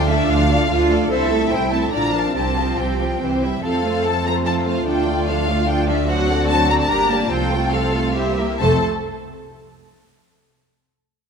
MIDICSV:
0, 0, Header, 1, 7, 480
1, 0, Start_track
1, 0, Key_signature, -1, "major"
1, 0, Tempo, 404313
1, 1314, Time_signature, 3, 2, 24, 8
1, 2276, Tempo, 428878
1, 4196, Tempo, 408998
1, 8996, Tempo, 442478
1, 9956, Tempo, 424328
1, 12998, End_track
2, 0, Start_track
2, 0, Title_t, "Violin section"
2, 0, Program_c, 0, 48
2, 105, Note_on_c, 0, 76, 70
2, 348, Note_off_c, 0, 76, 0
2, 348, Note_on_c, 0, 77, 78
2, 1072, Note_off_c, 0, 77, 0
2, 1307, Note_on_c, 0, 76, 67
2, 1753, Note_off_c, 0, 76, 0
2, 1782, Note_on_c, 0, 79, 73
2, 2027, Note_off_c, 0, 79, 0
2, 2027, Note_on_c, 0, 81, 58
2, 2265, Note_on_c, 0, 82, 73
2, 2273, Note_off_c, 0, 81, 0
2, 2502, Note_off_c, 0, 82, 0
2, 2508, Note_on_c, 0, 81, 62
2, 2743, Note_off_c, 0, 81, 0
2, 2756, Note_on_c, 0, 81, 60
2, 3234, Note_off_c, 0, 81, 0
2, 3237, Note_on_c, 0, 79, 48
2, 3958, Note_off_c, 0, 79, 0
2, 4200, Note_on_c, 0, 77, 60
2, 4649, Note_off_c, 0, 77, 0
2, 4679, Note_on_c, 0, 81, 71
2, 4922, Note_off_c, 0, 81, 0
2, 4931, Note_on_c, 0, 82, 59
2, 5025, Note_off_c, 0, 82, 0
2, 5166, Note_on_c, 0, 81, 74
2, 5259, Note_off_c, 0, 81, 0
2, 5410, Note_on_c, 0, 77, 52
2, 5640, Note_off_c, 0, 77, 0
2, 5647, Note_on_c, 0, 79, 60
2, 6111, Note_off_c, 0, 79, 0
2, 6118, Note_on_c, 0, 77, 69
2, 6584, Note_off_c, 0, 77, 0
2, 6594, Note_on_c, 0, 79, 76
2, 6832, Note_off_c, 0, 79, 0
2, 6846, Note_on_c, 0, 76, 61
2, 7072, Note_off_c, 0, 76, 0
2, 7072, Note_on_c, 0, 78, 73
2, 7535, Note_on_c, 0, 81, 85
2, 7547, Note_off_c, 0, 78, 0
2, 7773, Note_off_c, 0, 81, 0
2, 7788, Note_on_c, 0, 82, 74
2, 7835, Note_off_c, 0, 82, 0
2, 7910, Note_on_c, 0, 81, 76
2, 8015, Note_on_c, 0, 82, 84
2, 8023, Note_off_c, 0, 81, 0
2, 8254, Note_on_c, 0, 81, 68
2, 8259, Note_off_c, 0, 82, 0
2, 8498, Note_on_c, 0, 79, 74
2, 8502, Note_off_c, 0, 81, 0
2, 8977, Note_on_c, 0, 77, 64
2, 8991, Note_off_c, 0, 79, 0
2, 9454, Note_on_c, 0, 76, 58
2, 9456, Note_off_c, 0, 77, 0
2, 9948, Note_on_c, 0, 81, 60
2, 9951, Note_off_c, 0, 76, 0
2, 10224, Note_off_c, 0, 81, 0
2, 12998, End_track
3, 0, Start_track
3, 0, Title_t, "Violin section"
3, 0, Program_c, 1, 48
3, 114, Note_on_c, 1, 69, 53
3, 115, Note_on_c, 1, 74, 54
3, 353, Note_on_c, 1, 77, 53
3, 355, Note_on_c, 1, 65, 53
3, 357, Note_off_c, 1, 69, 0
3, 358, Note_off_c, 1, 74, 0
3, 596, Note_off_c, 1, 77, 0
3, 597, Note_off_c, 1, 65, 0
3, 604, Note_on_c, 1, 69, 48
3, 605, Note_on_c, 1, 74, 50
3, 837, Note_on_c, 1, 65, 54
3, 837, Note_on_c, 1, 77, 49
3, 841, Note_off_c, 1, 69, 0
3, 841, Note_off_c, 1, 74, 0
3, 1059, Note_off_c, 1, 65, 0
3, 1060, Note_off_c, 1, 77, 0
3, 1078, Note_on_c, 1, 69, 57
3, 1078, Note_on_c, 1, 74, 56
3, 1313, Note_on_c, 1, 72, 51
3, 1315, Note_off_c, 1, 69, 0
3, 1315, Note_off_c, 1, 72, 0
3, 1315, Note_off_c, 1, 74, 0
3, 1315, Note_on_c, 1, 72, 51
3, 1536, Note_off_c, 1, 72, 0
3, 1555, Note_on_c, 1, 69, 53
3, 1556, Note_on_c, 1, 76, 47
3, 1792, Note_off_c, 1, 69, 0
3, 1793, Note_off_c, 1, 76, 0
3, 1802, Note_on_c, 1, 72, 47
3, 1804, Note_off_c, 1, 72, 0
3, 1804, Note_on_c, 1, 72, 43
3, 2038, Note_off_c, 1, 72, 0
3, 2039, Note_on_c, 1, 69, 45
3, 2039, Note_on_c, 1, 76, 44
3, 2279, Note_off_c, 1, 69, 0
3, 2279, Note_off_c, 1, 76, 0
3, 2285, Note_on_c, 1, 74, 42
3, 2286, Note_off_c, 1, 74, 0
3, 2286, Note_on_c, 1, 74, 38
3, 2501, Note_off_c, 1, 74, 0
3, 2512, Note_on_c, 1, 77, 44
3, 2513, Note_on_c, 1, 70, 44
3, 2755, Note_off_c, 1, 77, 0
3, 2756, Note_off_c, 1, 70, 0
3, 2767, Note_on_c, 1, 67, 39
3, 2770, Note_on_c, 1, 72, 40
3, 2989, Note_off_c, 1, 67, 0
3, 2991, Note_off_c, 1, 72, 0
3, 3004, Note_on_c, 1, 65, 40
3, 3008, Note_on_c, 1, 67, 38
3, 3242, Note_off_c, 1, 67, 0
3, 3245, Note_off_c, 1, 65, 0
3, 3254, Note_on_c, 1, 72, 37
3, 3255, Note_on_c, 1, 67, 39
3, 3480, Note_off_c, 1, 67, 0
3, 3491, Note_off_c, 1, 72, 0
3, 3494, Note_on_c, 1, 65, 39
3, 3494, Note_on_c, 1, 67, 34
3, 3721, Note_off_c, 1, 67, 0
3, 3729, Note_off_c, 1, 65, 0
3, 3734, Note_on_c, 1, 67, 37
3, 3734, Note_on_c, 1, 72, 37
3, 3950, Note_off_c, 1, 67, 0
3, 3950, Note_off_c, 1, 72, 0
3, 3968, Note_on_c, 1, 76, 40
3, 3970, Note_on_c, 1, 64, 39
3, 4191, Note_on_c, 1, 69, 45
3, 4198, Note_off_c, 1, 76, 0
3, 4199, Note_off_c, 1, 64, 0
3, 4418, Note_off_c, 1, 69, 0
3, 4443, Note_on_c, 1, 72, 40
3, 4445, Note_on_c, 1, 65, 45
3, 4677, Note_on_c, 1, 69, 41
3, 4683, Note_off_c, 1, 72, 0
3, 4684, Note_off_c, 1, 65, 0
3, 4920, Note_off_c, 1, 69, 0
3, 4924, Note_on_c, 1, 65, 39
3, 4924, Note_on_c, 1, 72, 42
3, 5162, Note_on_c, 1, 69, 35
3, 5164, Note_off_c, 1, 65, 0
3, 5164, Note_off_c, 1, 72, 0
3, 5167, Note_off_c, 1, 69, 0
3, 5167, Note_on_c, 1, 69, 40
3, 5389, Note_off_c, 1, 69, 0
3, 5398, Note_on_c, 1, 65, 43
3, 5398, Note_on_c, 1, 72, 45
3, 5636, Note_on_c, 1, 62, 48
3, 5638, Note_on_c, 1, 69, 49
3, 5639, Note_off_c, 1, 65, 0
3, 5639, Note_off_c, 1, 72, 0
3, 5860, Note_off_c, 1, 62, 0
3, 5861, Note_off_c, 1, 69, 0
3, 5875, Note_on_c, 1, 74, 45
3, 5877, Note_on_c, 1, 65, 42
3, 6116, Note_off_c, 1, 74, 0
3, 6116, Note_on_c, 1, 62, 43
3, 6116, Note_on_c, 1, 69, 47
3, 6117, Note_off_c, 1, 65, 0
3, 6355, Note_off_c, 1, 62, 0
3, 6355, Note_off_c, 1, 69, 0
3, 6358, Note_on_c, 1, 65, 42
3, 6361, Note_on_c, 1, 74, 42
3, 6595, Note_off_c, 1, 65, 0
3, 6597, Note_off_c, 1, 74, 0
3, 6597, Note_on_c, 1, 62, 43
3, 6598, Note_on_c, 1, 69, 42
3, 6818, Note_off_c, 1, 62, 0
3, 6818, Note_off_c, 1, 69, 0
3, 6838, Note_on_c, 1, 74, 52
3, 6842, Note_on_c, 1, 65, 48
3, 7062, Note_on_c, 1, 66, 51
3, 7067, Note_on_c, 1, 72, 51
3, 7073, Note_off_c, 1, 74, 0
3, 7075, Note_off_c, 1, 65, 0
3, 7287, Note_off_c, 1, 66, 0
3, 7289, Note_off_c, 1, 72, 0
3, 7307, Note_on_c, 1, 69, 47
3, 7311, Note_on_c, 1, 74, 49
3, 7546, Note_off_c, 1, 69, 0
3, 7548, Note_off_c, 1, 74, 0
3, 7550, Note_on_c, 1, 72, 47
3, 7551, Note_on_c, 1, 66, 51
3, 7785, Note_on_c, 1, 69, 45
3, 7786, Note_off_c, 1, 66, 0
3, 7786, Note_off_c, 1, 72, 0
3, 7789, Note_on_c, 1, 74, 46
3, 8022, Note_off_c, 1, 69, 0
3, 8024, Note_off_c, 1, 74, 0
3, 8027, Note_on_c, 1, 70, 50
3, 8028, Note_off_c, 1, 70, 0
3, 8028, Note_on_c, 1, 70, 46
3, 8249, Note_off_c, 1, 70, 0
3, 8275, Note_on_c, 1, 67, 45
3, 8279, Note_on_c, 1, 74, 50
3, 8510, Note_on_c, 1, 69, 54
3, 8513, Note_off_c, 1, 67, 0
3, 8513, Note_on_c, 1, 72, 49
3, 8515, Note_off_c, 1, 74, 0
3, 8736, Note_off_c, 1, 69, 0
3, 8737, Note_off_c, 1, 72, 0
3, 8760, Note_on_c, 1, 65, 47
3, 8761, Note_on_c, 1, 69, 48
3, 8985, Note_off_c, 1, 69, 0
3, 8999, Note_on_c, 1, 69, 44
3, 8999, Note_on_c, 1, 72, 46
3, 9000, Note_off_c, 1, 65, 0
3, 9218, Note_off_c, 1, 69, 0
3, 9228, Note_off_c, 1, 72, 0
3, 9230, Note_on_c, 1, 65, 43
3, 9231, Note_on_c, 1, 69, 43
3, 9465, Note_on_c, 1, 72, 39
3, 9466, Note_off_c, 1, 65, 0
3, 9466, Note_on_c, 1, 64, 37
3, 9467, Note_off_c, 1, 69, 0
3, 9695, Note_off_c, 1, 64, 0
3, 9695, Note_off_c, 1, 72, 0
3, 9708, Note_on_c, 1, 67, 40
3, 9708, Note_on_c, 1, 70, 42
3, 9945, Note_on_c, 1, 69, 55
3, 9946, Note_on_c, 1, 72, 54
3, 9954, Note_off_c, 1, 67, 0
3, 9954, Note_off_c, 1, 70, 0
3, 10222, Note_off_c, 1, 69, 0
3, 10222, Note_off_c, 1, 72, 0
3, 12998, End_track
4, 0, Start_track
4, 0, Title_t, "Cello section"
4, 0, Program_c, 2, 48
4, 0, Note_on_c, 2, 62, 68
4, 838, Note_on_c, 2, 65, 64
4, 841, Note_off_c, 2, 62, 0
4, 1305, Note_off_c, 2, 65, 0
4, 1313, Note_on_c, 2, 69, 75
4, 1780, Note_off_c, 2, 69, 0
4, 1791, Note_on_c, 2, 64, 52
4, 2266, Note_off_c, 2, 64, 0
4, 2272, Note_on_c, 2, 62, 53
4, 2743, Note_off_c, 2, 62, 0
4, 2755, Note_on_c, 2, 60, 52
4, 3937, Note_off_c, 2, 60, 0
4, 4198, Note_on_c, 2, 69, 64
4, 5118, Note_off_c, 2, 69, 0
4, 5167, Note_on_c, 2, 65, 50
4, 5629, Note_off_c, 2, 65, 0
4, 5643, Note_on_c, 2, 65, 57
4, 7042, Note_off_c, 2, 65, 0
4, 7071, Note_on_c, 2, 66, 66
4, 8002, Note_off_c, 2, 66, 0
4, 8019, Note_on_c, 2, 67, 58
4, 8495, Note_off_c, 2, 67, 0
4, 8504, Note_on_c, 2, 65, 64
4, 8985, Note_off_c, 2, 65, 0
4, 8998, Note_on_c, 2, 69, 58
4, 9466, Note_off_c, 2, 69, 0
4, 9466, Note_on_c, 2, 67, 49
4, 9708, Note_off_c, 2, 67, 0
4, 9955, Note_on_c, 2, 41, 63
4, 10227, Note_off_c, 2, 41, 0
4, 12998, End_track
5, 0, Start_track
5, 0, Title_t, "French horn section"
5, 0, Program_c, 3, 60
5, 0, Note_on_c, 3, 57, 42
5, 0, Note_on_c, 3, 62, 47
5, 1267, Note_off_c, 3, 57, 0
5, 1288, Note_off_c, 3, 62, 0
5, 1306, Note_on_c, 3, 57, 51
5, 1310, Note_on_c, 3, 64, 56
5, 2224, Note_off_c, 3, 57, 0
5, 2226, Note_off_c, 3, 64, 0
5, 2275, Note_on_c, 3, 62, 47
5, 2280, Note_on_c, 3, 53, 52
5, 2741, Note_off_c, 3, 53, 0
5, 2754, Note_off_c, 3, 62, 0
5, 2755, Note_on_c, 3, 53, 37
5, 2759, Note_on_c, 3, 60, 44
5, 3228, Note_off_c, 3, 53, 0
5, 3228, Note_off_c, 3, 60, 0
5, 3241, Note_on_c, 3, 53, 35
5, 3242, Note_on_c, 3, 60, 34
5, 3705, Note_off_c, 3, 60, 0
5, 3714, Note_off_c, 3, 53, 0
5, 3719, Note_on_c, 3, 52, 42
5, 3719, Note_on_c, 3, 60, 38
5, 3827, Note_off_c, 3, 52, 0
5, 3954, Note_off_c, 3, 60, 0
5, 4207, Note_on_c, 3, 57, 44
5, 4207, Note_on_c, 3, 60, 47
5, 5601, Note_off_c, 3, 60, 0
5, 5639, Note_on_c, 3, 62, 50
5, 7030, Note_off_c, 3, 57, 0
5, 7073, Note_on_c, 3, 60, 57
5, 7976, Note_off_c, 3, 60, 0
5, 8018, Note_on_c, 3, 58, 52
5, 8458, Note_off_c, 3, 62, 0
5, 8470, Note_off_c, 3, 58, 0
5, 8499, Note_on_c, 3, 60, 55
5, 8500, Note_on_c, 3, 57, 49
5, 9418, Note_off_c, 3, 57, 0
5, 9462, Note_on_c, 3, 58, 53
5, 9665, Note_off_c, 3, 60, 0
5, 9693, Note_off_c, 3, 58, 0
5, 9943, Note_on_c, 3, 60, 47
5, 9947, Note_on_c, 3, 57, 52
5, 10151, Note_off_c, 3, 60, 0
5, 10154, Note_off_c, 3, 57, 0
5, 12998, End_track
6, 0, Start_track
6, 0, Title_t, "Viola section"
6, 0, Program_c, 4, 48
6, 123, Note_on_c, 4, 65, 47
6, 125, Note_on_c, 4, 57, 49
6, 362, Note_off_c, 4, 65, 0
6, 362, Note_on_c, 4, 53, 54
6, 362, Note_on_c, 4, 62, 54
6, 363, Note_off_c, 4, 57, 0
6, 596, Note_on_c, 4, 57, 55
6, 597, Note_on_c, 4, 65, 55
6, 600, Note_off_c, 4, 53, 0
6, 600, Note_off_c, 4, 62, 0
6, 837, Note_off_c, 4, 57, 0
6, 837, Note_on_c, 4, 53, 48
6, 838, Note_off_c, 4, 65, 0
6, 838, Note_on_c, 4, 62, 49
6, 1060, Note_off_c, 4, 53, 0
6, 1060, Note_off_c, 4, 62, 0
6, 1074, Note_on_c, 4, 57, 50
6, 1074, Note_on_c, 4, 65, 45
6, 1311, Note_on_c, 4, 64, 50
6, 1313, Note_off_c, 4, 57, 0
6, 1313, Note_off_c, 4, 65, 0
6, 1314, Note_on_c, 4, 60, 54
6, 1533, Note_off_c, 4, 64, 0
6, 1535, Note_off_c, 4, 60, 0
6, 1548, Note_on_c, 4, 57, 47
6, 1550, Note_on_c, 4, 60, 47
6, 1773, Note_off_c, 4, 60, 0
6, 1787, Note_on_c, 4, 64, 48
6, 1788, Note_on_c, 4, 60, 47
6, 1789, Note_off_c, 4, 57, 0
6, 2019, Note_off_c, 4, 60, 0
6, 2030, Note_off_c, 4, 64, 0
6, 2030, Note_on_c, 4, 57, 44
6, 2033, Note_on_c, 4, 60, 45
6, 2272, Note_on_c, 4, 50, 39
6, 2274, Note_off_c, 4, 57, 0
6, 2276, Note_off_c, 4, 60, 0
6, 2276, Note_on_c, 4, 65, 38
6, 2493, Note_off_c, 4, 50, 0
6, 2496, Note_off_c, 4, 65, 0
6, 2514, Note_on_c, 4, 53, 34
6, 2514, Note_on_c, 4, 62, 34
6, 2750, Note_on_c, 4, 60, 40
6, 2751, Note_on_c, 4, 55, 40
6, 2756, Note_off_c, 4, 53, 0
6, 2756, Note_off_c, 4, 62, 0
6, 2980, Note_off_c, 4, 60, 0
6, 2981, Note_off_c, 4, 55, 0
6, 3000, Note_on_c, 4, 53, 39
6, 3002, Note_on_c, 4, 55, 37
6, 3231, Note_off_c, 4, 55, 0
6, 3244, Note_off_c, 4, 53, 0
6, 3244, Note_on_c, 4, 55, 42
6, 3244, Note_on_c, 4, 60, 36
6, 3469, Note_off_c, 4, 55, 0
6, 3481, Note_on_c, 4, 53, 40
6, 3483, Note_on_c, 4, 55, 40
6, 3486, Note_off_c, 4, 60, 0
6, 3722, Note_off_c, 4, 53, 0
6, 3723, Note_off_c, 4, 55, 0
6, 3725, Note_on_c, 4, 52, 38
6, 3726, Note_on_c, 4, 60, 35
6, 3945, Note_off_c, 4, 52, 0
6, 3945, Note_off_c, 4, 60, 0
6, 3966, Note_on_c, 4, 64, 33
6, 3967, Note_on_c, 4, 55, 34
6, 4195, Note_on_c, 4, 53, 41
6, 4197, Note_off_c, 4, 64, 0
6, 4198, Note_off_c, 4, 55, 0
6, 4199, Note_on_c, 4, 60, 47
6, 4420, Note_off_c, 4, 53, 0
6, 4422, Note_off_c, 4, 60, 0
6, 4435, Note_on_c, 4, 57, 37
6, 4436, Note_off_c, 4, 57, 0
6, 4436, Note_on_c, 4, 57, 39
6, 4677, Note_on_c, 4, 53, 39
6, 4679, Note_off_c, 4, 57, 0
6, 4680, Note_on_c, 4, 60, 42
6, 4920, Note_off_c, 4, 53, 0
6, 4920, Note_on_c, 4, 57, 39
6, 4922, Note_off_c, 4, 57, 0
6, 4922, Note_off_c, 4, 60, 0
6, 4922, Note_on_c, 4, 57, 47
6, 5163, Note_off_c, 4, 57, 0
6, 5163, Note_on_c, 4, 60, 43
6, 5166, Note_on_c, 4, 53, 41
6, 5387, Note_off_c, 4, 60, 0
6, 5388, Note_off_c, 4, 53, 0
6, 5394, Note_on_c, 4, 57, 38
6, 5398, Note_off_c, 4, 57, 0
6, 5398, Note_on_c, 4, 57, 37
6, 5637, Note_on_c, 4, 53, 46
6, 5637, Note_on_c, 4, 62, 40
6, 5639, Note_off_c, 4, 57, 0
6, 5860, Note_off_c, 4, 53, 0
6, 5860, Note_off_c, 4, 62, 0
6, 5872, Note_on_c, 4, 57, 39
6, 5872, Note_on_c, 4, 65, 40
6, 6114, Note_off_c, 4, 57, 0
6, 6114, Note_off_c, 4, 65, 0
6, 6116, Note_on_c, 4, 53, 43
6, 6117, Note_on_c, 4, 62, 47
6, 6355, Note_off_c, 4, 53, 0
6, 6356, Note_off_c, 4, 62, 0
6, 6356, Note_on_c, 4, 65, 46
6, 6360, Note_on_c, 4, 57, 47
6, 6594, Note_off_c, 4, 65, 0
6, 6596, Note_off_c, 4, 57, 0
6, 6599, Note_on_c, 4, 62, 42
6, 6601, Note_on_c, 4, 53, 49
6, 6819, Note_off_c, 4, 53, 0
6, 6819, Note_off_c, 4, 62, 0
6, 6838, Note_on_c, 4, 57, 44
6, 6839, Note_on_c, 4, 65, 40
6, 7073, Note_off_c, 4, 57, 0
6, 7073, Note_off_c, 4, 65, 0
6, 7076, Note_on_c, 4, 54, 47
6, 7076, Note_on_c, 4, 62, 46
6, 7294, Note_off_c, 4, 54, 0
6, 7294, Note_off_c, 4, 62, 0
6, 7310, Note_on_c, 4, 60, 42
6, 7314, Note_on_c, 4, 57, 46
6, 7547, Note_off_c, 4, 60, 0
6, 7549, Note_off_c, 4, 57, 0
6, 7553, Note_on_c, 4, 54, 42
6, 7553, Note_on_c, 4, 62, 45
6, 7786, Note_on_c, 4, 60, 51
6, 7787, Note_on_c, 4, 57, 47
6, 7788, Note_off_c, 4, 54, 0
6, 7788, Note_off_c, 4, 62, 0
6, 8019, Note_on_c, 4, 62, 50
6, 8021, Note_on_c, 4, 55, 46
6, 8022, Note_off_c, 4, 60, 0
6, 8023, Note_off_c, 4, 57, 0
6, 8243, Note_off_c, 4, 62, 0
6, 8245, Note_off_c, 4, 55, 0
6, 8257, Note_on_c, 4, 58, 41
6, 8259, Note_off_c, 4, 58, 0
6, 8259, Note_on_c, 4, 58, 47
6, 8505, Note_off_c, 4, 58, 0
6, 8505, Note_on_c, 4, 53, 50
6, 8505, Note_on_c, 4, 60, 49
6, 8733, Note_off_c, 4, 53, 0
6, 8733, Note_off_c, 4, 60, 0
6, 8749, Note_on_c, 4, 57, 42
6, 8751, Note_off_c, 4, 57, 0
6, 8751, Note_on_c, 4, 57, 43
6, 8994, Note_on_c, 4, 53, 48
6, 8995, Note_off_c, 4, 57, 0
6, 8996, Note_on_c, 4, 60, 46
6, 9223, Note_on_c, 4, 57, 42
6, 9224, Note_off_c, 4, 57, 0
6, 9224, Note_on_c, 4, 57, 49
6, 9226, Note_off_c, 4, 53, 0
6, 9226, Note_off_c, 4, 60, 0
6, 9463, Note_on_c, 4, 55, 41
6, 9464, Note_off_c, 4, 57, 0
6, 9464, Note_on_c, 4, 60, 44
6, 9694, Note_off_c, 4, 55, 0
6, 9694, Note_off_c, 4, 60, 0
6, 9712, Note_on_c, 4, 64, 37
6, 9713, Note_on_c, 4, 58, 38
6, 9952, Note_on_c, 4, 57, 45
6, 9956, Note_off_c, 4, 58, 0
6, 9956, Note_off_c, 4, 64, 0
6, 9956, Note_on_c, 4, 69, 55
6, 10226, Note_off_c, 4, 57, 0
6, 10228, Note_off_c, 4, 69, 0
6, 12998, End_track
7, 0, Start_track
7, 0, Title_t, "Double bass section"
7, 0, Program_c, 5, 48
7, 0, Note_on_c, 5, 38, 60
7, 302, Note_off_c, 5, 38, 0
7, 357, Note_on_c, 5, 38, 68
7, 781, Note_off_c, 5, 38, 0
7, 835, Note_on_c, 5, 38, 62
7, 1257, Note_off_c, 5, 38, 0
7, 1310, Note_on_c, 5, 36, 56
7, 1732, Note_off_c, 5, 36, 0
7, 1788, Note_on_c, 5, 36, 58
7, 2216, Note_off_c, 5, 36, 0
7, 2276, Note_on_c, 5, 34, 54
7, 2697, Note_off_c, 5, 34, 0
7, 2749, Note_on_c, 5, 36, 50
7, 3183, Note_off_c, 5, 36, 0
7, 3239, Note_on_c, 5, 36, 48
7, 3666, Note_off_c, 5, 36, 0
7, 3723, Note_on_c, 5, 36, 41
7, 4139, Note_off_c, 5, 36, 0
7, 4197, Note_on_c, 5, 41, 47
7, 5596, Note_off_c, 5, 41, 0
7, 5641, Note_on_c, 5, 38, 54
7, 7974, Note_off_c, 5, 38, 0
7, 8024, Note_on_c, 5, 31, 56
7, 8498, Note_off_c, 5, 31, 0
7, 8505, Note_on_c, 5, 36, 53
7, 9696, Note_off_c, 5, 36, 0
7, 9954, Note_on_c, 5, 29, 48
7, 10227, Note_off_c, 5, 29, 0
7, 12998, End_track
0, 0, End_of_file